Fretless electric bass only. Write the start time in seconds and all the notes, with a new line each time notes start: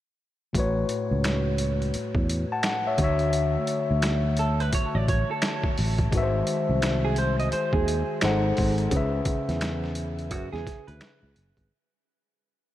0.55 A1
1.11 C#2
1.95 muted fretless electric bass stroke
2.15 E2
2.99 D2
3.91 D2
4.73 muted fretless electric bass stroke
4.95 A1
5.79 A1
6.13 G#1
6.69 C2
7.73 D#2
8.23 G#1
8.59 G#1
8.92 C#2
9.49 E2
10.31 F#2
10.53 E2
10.88 D2
11.23 C#2
11.37 F#1
11.57 G#1